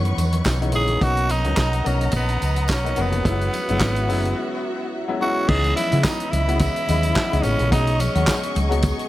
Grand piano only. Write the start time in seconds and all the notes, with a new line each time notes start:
Already playing: D#3 E3 G#3 B3 C#4 D#4 F#4
0.60 E3 G#3 B3 C#4 D#4
0.73 E3 G#3 B3 C#4 D#4
1.00 F#3 A#3 B3 C#4 D#4
1.44 F#3 A#3 B3 C#4 D#4
1.84 F#3 B3 C#4 D#4 A#4
2.84 F#3 A#3 B3 C#4 D#4
2.97 F#3 A#3 B3 C#4 F#4
3.25 F#3 G#3 B3 C#4 E4
3.69 F#3 G#3 B3 C#4 E4
4.08 F#3 G#3 B3 C#4 E4
5.08 F#3 G#3 B3 C#4 E4
5.21 F#3 G#3 B3 C#4 E4
5.48 E3 G#3 B3 C#4 D#4
5.91 E3 G#3 B3 C#4 E4
6.48 E3 G#3 B3 C#4 F#4
6.88 E3 G#3 B3 C#4 D#5
7.32 E3 G#3 B3 C#4 D#4
7.71 F#3 G#3 B3 C#4 D#4
8.15 F#3 G#3 B3 C#4 F#4
8.69 F#3 G#3 B3 C#4 F#4